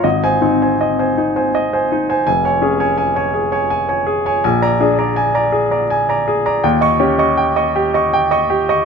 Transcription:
<<
  \new Staff \with { instrumentName = "Grand piano" } { \time 3/4 \key aes \mixolydian \tempo 4 = 81 << { r16 aes''16 r2 r8 | aes''8 r2 r8 | r16 bes''16 r2 r8 | r16 des'''16 r2 r8 | } \\ { ees''16 c''16 ees'16 <c'' aes''>16 ees''16 <c'' aes''>16 ees'16 <c'' aes''>16 ees''16 <c'' aes''>16 ees'16 <c'' aes''>16 | r16 <des'' aes''>16 aes'16 <des'' aes''>16 aes''16 <des'' aes''>16 aes'16 <des'' aes''>16 aes''16 <des'' aes''>16 aes'16 <des'' aes''>16 | aes''16 d''16 aes'16 <d'' bes''>16 aes''16 <d'' bes''>16 aes'16 <d'' bes''>16 aes''16 <d'' bes''>16 aes'16 <d'' bes''>16 | g''16 ees''16 g'16 <ees'' des'''>16 g''16 <ees'' des'''>16 g'16 <ees'' des'''>16 g''16 <ees'' des'''>16 g'16 <ees'' des'''>16 | } >> }
  \new Staff \with { instrumentName = "Grand piano" } { \clef bass \time 3/4 \key aes \mixolydian aes,,8 c'8 r2 | f,,8 des'8 r2 | bes,,8 d'8 r2 | ees,8 des'8 r2 | }
>>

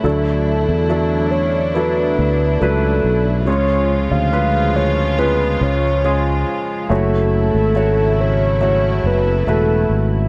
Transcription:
<<
  \new Staff \with { instrumentName = "Soft synth lead" } { \time 4/4 \key cis \phrygian \tempo 4 = 70 a'4. cis''8 b'4 a'8. r16 | cis''8. eis''8. cis''8 b'8 cis''4 r8 | a'4. cis''8 cis''8 b'8 a'8. r16 | }
  \new Staff \with { instrumentName = "Grand piano" } { \time 4/4 \key cis \phrygian <fis d' e' a'>4 <fis d' e' a'>4 <fis d' e' a'>4 <fis d' e' b'>4 | <gis cis' eis' cis''>4 <gis cis' eis' b'>4 <gis cis' eis' b'>4 <gis cis' eis' gis'>4 | <a e' fis' cis''>4 <a e' fis' cis''>4 <a e' fis' cis''>4 <a e' fis' b'>4 | }
  \new Staff \with { instrumentName = "Grand piano" } { \clef bass \time 4/4 \key cis \phrygian d4. r2 r8 | cis4. r2 r8 | r1 | }
  \new Staff \with { instrumentName = "String section" } { \clef bass \time 4/4 \key cis \phrygian <fis a d' e'>1 | <cis eis gis eis'>1 | <cis fis a e'>1 | }
  \new Staff \with { instrumentName = "Fretless electric bass" } { \clef bass \time 4/4 \key cis \phrygian d,8. e,4.~ e,16 d,8 cis,8 b,,8 | cis,8. d,4.~ d,16 cis,4 r8 | fis,,8. gis,,4.~ gis,,16 fis,,8 e,,8 gis,,8 | }
>>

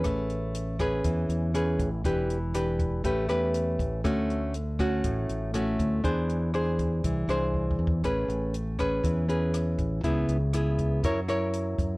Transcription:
<<
  \new Staff \with { instrumentName = "Nylon-string guitar" } { \time 4/4 \key a \major \tempo 4 = 120 << { <cis' gis' b'>4. <cis' gis' b'>4. <cis' gis' b'>8 r8 | <d' g' b'>8 r8 <d' g' b'>4 <cis' g' b'>8 <cis' g' b'>4. | <a cis' fis'>4 r8 <a cis' fis'>4. <a cis' fis'>4 | <d' gis' bis'>4 <d' gis' bis'>4. <d' gis' bis'>4. |
<cis' gis' b'>4 r8 <cis' gis' b'>4 <cis' gis' b'>4. | <b e' gis'>8 r8 <b e' gis'>4 <e' ais' cis''>8 <e' ais' cis''>4. | } \\ { a2 e2 | e2 a2 | d2 a,2 | e2 e2 |
a2 e2 | cis2 fis2 | } >> }
  \new Staff \with { instrumentName = "Fingered electric bass" } { \clef bass \time 4/4 \key a \major a,,2 e,8 e,4 a,,8 | e,,2 a,,8 e,4 a,,8 | d,2 a,,8 a,,4 d,8 | e,2 bis,,8 bis,,4 e,8 |
a,,8 a,,4. e,4. a,,8 | cis,8 cis,4. fis,4. fis,8 | }
  \new DrumStaff \with { instrumentName = "Drums" } \drummode { \time 4/4 <hh bd ss>8 hh8 hh8 <hh bd ss>8 <hh bd>8 hh8 <hh ss>8 <hh bd>8 | <hh bd>8 hh8 <hh ss>8 <hh bd>8 <hh bd>8 <hh ss>8 hh8 <hh bd>8 | <hh bd ss>8 hh8 hh8 <hh bd ss>8 <hh bd>8 hh8 <hh ss>8 <hh bd>8 | <hh bd>8 hh8 <hh ss>8 <hh bd>8 <hh bd>8 <hh ss>8 \tuplet 3/2 { bd8 bd8 bd8 } |
<hh bd ss>8 hh8 hh8 <hh bd ss>8 <hh bd>8 hh8 <hh ss>8 <hh bd>8 | <hh bd>8 hh8 <hh ss>8 <hh bd>8 <hh bd>8 <hh ss>8 hh8 <hh bd>8 | }
>>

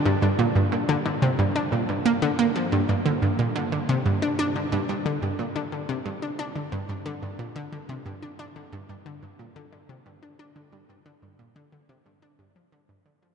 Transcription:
\new Staff \with { instrumentName = "Synth arpeggio sound" } { \clef bass \time 4/4 \key g \minor \tempo 4 = 90 g,16 g,16 bes,16 g,16 bes,16 d16 d16 c16 g,16 d'16 bes,16 g,16 bes16 d16 bes16 f16 | g,16 g,16 d16 g,16 bes,16 d16 d16 c16 g,16 d'16 d'16 d16 g,16 g,16 d16 g,16 | bes,16 d16 d16 c16 g,16 d'16 d'16 d16 g,16 g,16 d16 g,16 bes,16 d16 d16 c16 | g,16 d'16 d'16 d16 g,16 g,16 d16 g,16 bes,16 d16 d16 c16 g,16 d'16 d'16 d16 |
g,16 g,16 d16 g,16 bes,16 d16 d16 c16 g,16 d'16 g,16 f16 d16 g,16 d16 f16 | }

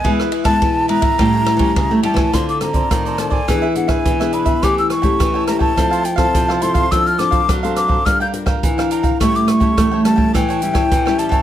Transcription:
<<
  \new Staff \with { instrumentName = "Flute" } { \time 4/4 \key e \phrygian \tempo 4 = 105 gis''16 r8 a''8. bes''2 a''8 | \key d \minor c'''16 d'''16 bes''4 a''16 gis''8. fis''16 gis''8. b''8 | d'''16 e'''16 cis'''4 bes''16 a''8. g''16 a''8. c'''8 | e'''16 f'''16 d'''4 d'''8 f'''16 g'''16 r4 bes''8 |
cis'''16 d'''16 cis'''4 a''8 g''4. a''8 | }
  \new Staff \with { instrumentName = "Cavaquinho" } { \time 4/4 \key e \phrygian <e' gis' b' e''>8 <e' gis' b' e''>16 <e' gis' b' e''>16 r8 <e' gis' b' e''>16 <gis' b' e''>16 <g' a' cis'' g''>16 <a' cis'' g''>16 <g' a' cis'' g''>16 <g' a' cis'' g''>16 r16 <a' cis'' g''>16 <g' a' cis'' g''>16 <a' cis'' g''>16 | \key d \minor <f' a' c'' d''>8 r16 <a' c'' d''>16 <f' a' c'' d''>16 <a' c'' d''>8 <a' c'' d''>16 <d' gis' b' e''>16 <gis' b' e''>16 r16 <gis' b' e''>8 <gis' b' e''>16 <d' gis' b' e''>16 <gis' b' e''>16 | <g' a' cis'' g''>8 r16 <a' cis'' g''>16 <g' a' cis'' g''>16 <a' cis'' g''>8 <a' cis'' g''>16 <e' a' c'' f''>16 <a' c'' f''>16 r16 <a' c'' f''>8 <a' c'' f''>16 <e' a' c'' f''>16 <a' c'' f''>16 | <d' a' c'' f''>8 r16 <a' c'' f''>16 <d' a' c'' f''>16 <a' c'' f''>8 <a' c'' f''>16 <d' bes' f'' g''>16 <bes' f'' g''>16 r16 <bes' f'' g''>8 <bes' f'' g''>16 <d' bes' f'' g''>16 <bes' f'' g''>16 |
<g' a' cis'' g''>8 r16 <a' cis'' g''>16 <g' a' cis'' g''>16 <a' cis'' g''>8 <a' cis'' g''>16 <g' a' cis'' g''>16 <a' cis'' g''>16 r16 <a' cis'' g''>8 <a' cis'' g''>16 <g' a' cis'' g''>16 <a' cis'' g''>16 | }
  \new Staff \with { instrumentName = "Nylon-string guitar" } { \time 4/4 \key e \phrygian << { <gis b e'>8. <gis b e'>8. <gis b e'>16 r16 <g cis' e'>8. <g cis' e'>8. <g cis' e'>16 r16 | \key d \minor <c' f' a'>16 r16 <c' f' a'>16 <c' f'>8. <c' f' a'>16 r16 <b d' gis'>16 r16 <b d' gis'>8. <b d' gis'>8. | <a cis' g'>8 r16 <a cis' g'>8. <a cis' g'>8 <c' e' a'>8 r16 <c' e' a'>8. <c' e' a'>8 | <c' d' a'>16 r16 <c' d' a'>8. <c' d' a'>8. <d' f' bes'>16 r16 <d' f' bes'>8. <d' bes'>8. |
<g cis' e'>8. <g cis' e'>8. <g cis' e'>8. r16 <g cis' e'>8 r16 <g cis' e'>8. | } \\ { e4 b,4 a,4 e4 | d4 a,4 e4 b,4 | e4 e4 f4 c4 | f4 r4 g4 d4 |
a,4 e4 a,4 e4 | } >> }
  \new Staff \with { instrumentName = "Nylon-string guitar" } { \clef bass \time 4/4 \key e \phrygian e4 e4 a,8. e16 cis16 a16 g16 e16 | \key d \minor d4 ees4 e4 e4 | e4 e4 f4 f4 | f4 fis4 g4 e4 |
a4 a4 e4 e8 g16 e16 | }
  \new DrumStaff \with { instrumentName = "Drums" } \drummode { \time 4/4 <bd cymr>16 ss16 cymr16 <bd cymr ss>16 <bd cymr>8 cymr16 <bd cymr>16 <bd cymr ss>8 <cymr ss>16 <bd cymr>16 <bd cymr ss>8 cymr16 <bd cymr ss>16 | <hh bd ss>16 hh16 <hh ss>16 <hh bd>16 <hh bd ss>16 hh16 <hh ss>16 bd16 <hh bd ss>8 hh16 <hh bd ss>16 <hh bd>16 <hh ss>16 hh16 <hh bd>16 | <hh bd ss>16 hh16 <hh ss>16 <hh bd>16 <hh bd ss>8 <hh ss>16 bd16 <hh bd ss>16 hh16 hh16 <hh bd ss>16 <hh bd>16 ss16 hh16 <hh bd>16 | <hh bd ss>16 hh16 <hh ss>16 <hh bd>16 <hh bd ss>16 hh16 <hh ss>16 bd16 <hh bd ss>8 hh16 <hh bd ss>16 <hh bd>16 <hh ss>16 hh16 <hh bd>16 |
<hh bd ss>16 hh16 <hh ss>16 <hh bd>16 <hh bd ss>8 <hh ss>16 bd16 <hh bd ss>16 hh16 hh16 <hh bd ss>16 <hh bd>16 ss16 hh16 <hh bd>16 | }
>>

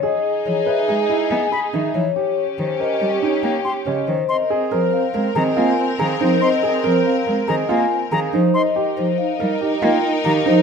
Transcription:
<<
  \new Staff \with { instrumentName = "Flute" } { \time 5/4 \key ees \dorian \tempo 4 = 141 r2. r8 b''8 r4 | r2. r8 c'''8 r4 | \key aes \major c'''8 r2 bes''8 r4 bes''8 r8 | c'''8 r2 bes''8 r4 bes''8 r8 |
c'''8 r2. r8 bes''8 r8 | }
  \new Staff \with { instrumentName = "Vibraphone" } { \time 5/4 \key ees \dorian dis''8 r8 des''8 e''8 r8 dis''8 gis''8 r8 e''8 des''8 | des''8 r8 c''8 ees''8 r8 des''8 g''8 r8 ees''8 c''8 | \key aes \major ees''8 r8 c''8 f''8 r8 ees''8 aes''8 r8 f''8 c''8 | ees''8 r8 c''8 f''8 r8 ees''8 aes''8 r8 f''8 c''8 |
ees''8 r8 c''8 f''8 r8 ees''8 g''8 r8 f''8 c''8 | }
  \new Staff \with { instrumentName = "Grand piano" } { \time 5/4 \key ees \dorian gis'8 r4 b'8 gis'8 e'8 r8 gis'8 dis'8 r8 | g'8 r4 bes'8 g'8 ees'8 r8 g'8 des'8 r8 | \key aes \major r8 aes'8 bes'8 r8 bes'8 aes'8 f'8 r8 aes'8 ees'8 | r8 aes'8 bes'8 r8 bes'8 aes'8 f'8 r8 aes'8 ees'8 |
r8 g'8 r4 bes'8 g'8 f'8 r8 g'8 ees'8 | }
  \new Staff \with { instrumentName = "String section" } { \time 5/4 \key ees \dorian <dis' gis'>1~ <dis' gis'>8 r8 | <des' g'>1~ <des' g'>8 r8 | \key aes \major <c' bes'>1~ <c' bes'>4~ | <c' bes'>1~ <c' bes'>8 r8 |
<ees' bes'>1~ <ees' bes'>4 | }
  \new Staff \with { instrumentName = "French horn" } { \time 5/4 \key ees \dorian gis'1~ gis'8 r8 | g'1~ g'8 r8 | \key aes \major c'8 c'8 c'8 c'8 c'8 c'8 c'8 c'8 c'8 c'8 | c'8 c'8 c'8 c'8 c'8 c'8 c'8 c'8 c'8 r8 |
ees'8 ees'8 ees'8 ees'8 ees'8 ees'8 ees'8 ees'8 ees'8 ees'8 | }
  \new Staff \with { instrumentName = "Cello" } { \clef bass \time 5/4 \key ees \dorian r4 e8 r8 gis8 r8 b8 r8 dis8 e8 | r4 ees8 r8 g8 r8 bes8 r8 des8 ees8 | \key aes \major r4 f8 r8 aes8 ees8 bes8 r8 ees8 f8 | r4 f8 r8 aes8 ees8 bes8 r8 ees8 f8 |
r4 f8 r8 g8 r8 bes8 r8 ees8 f8 | }
>>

